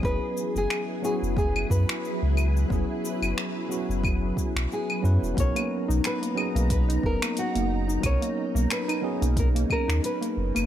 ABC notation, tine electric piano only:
X:1
M:4/4
L:1/8
Q:"Swing 16ths" 1/4=90
K:B
V:1 name="Tine electric piano"
[F,B,CEG]3 [F,B,CEF] z4 | [F,B,CEG]3 [F,B,CEF] z3 [F,B,CEB] | [F,B,CDA]3 [F,B,CDG] z4 | [F,B,CDA]3 [F,B,CDG] z4 |]